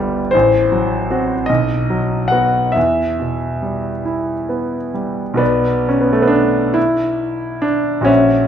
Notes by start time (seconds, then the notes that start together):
Already playing: G1 D2 B3 D4 D5
0.00 G3
0.31 A1 C5
0.72 F#3
1.10 C4 F#4
1.46 B1 D#5
1.90 F#3
2.28 B3 F#5
2.32 F#4
2.72 E2 E5
3.20 B2
3.62 G3
4.05 E4
4.49 B3
4.94 G3
5.34 B1 B3 F#4 B4
5.39 D5
5.89 C#4
6.01 B3
6.13 A3
6.22 B3
6.28 D4
6.74 E4
7.62 D4
8.01 A#1 C#4 F#4 C#5
8.06 E5